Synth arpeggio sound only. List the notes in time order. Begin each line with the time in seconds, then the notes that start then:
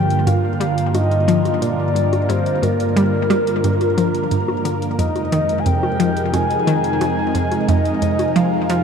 Already playing: F3
0.27 G2
0.60 G3
0.94 G2
1.28 F3
1.62 A#2
1.95 G2
2.29 G2
2.63 G2
2.96 G3
3.30 G3
3.64 G2
3.98 F3
4.31 G2
4.65 D3
4.99 F2
5.32 D#3
5.66 F2
6.00 F3
6.34 F2
6.67 D#3
7.01 F2
7.35 F2
7.69 F2
8.02 F2
8.36 F3
8.70 F3